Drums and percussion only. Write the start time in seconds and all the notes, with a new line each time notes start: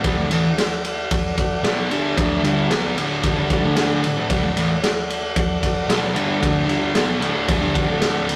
0.04 kick, ride
0.31 ride
0.58 snare, ride
0.85 ride
1.11 kick, ride
1.38 kick, ride
1.64 snare, ride
1.91 ride
2.18 kick, ride
2.44 ride
2.71 snare, ride
2.98 ride
3.23 kick, ride
3.50 kick, ride
3.76 snare, ride
4.04 ride
4.30 kick, ride
4.57 ride
4.83 snare, ride
5.10 ride
5.36 kick, ride
5.63 kick, ride
5.90 snare, ride
6.16 ride
6.43 kick, ride
6.69 ride
6.95 snare, ride
7.22 ride
7.48 kick, ride
7.75 kick, ride
8.02 snare, ride
8.29 ride